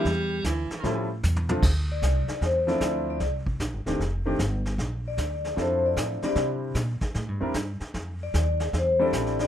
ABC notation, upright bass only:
X:1
M:4/4
L:1/8
Q:"Swing" 1/4=152
K:Dm
V:1 name="Upright bass" clef=bass
E,,2 D,, z A,,2 E,,2 | D,,2 C,, z E,,2 D,,2 | C,,2 (3B,,, G,,, _E,,, F,,,2 G,,,2 | B,,,2 D,,2 F,,2 A,, z |
C,2 B,, z (3A,, G,, E,, G,, z | F,,2 _E,,2 =E,,2 A,,,2 |]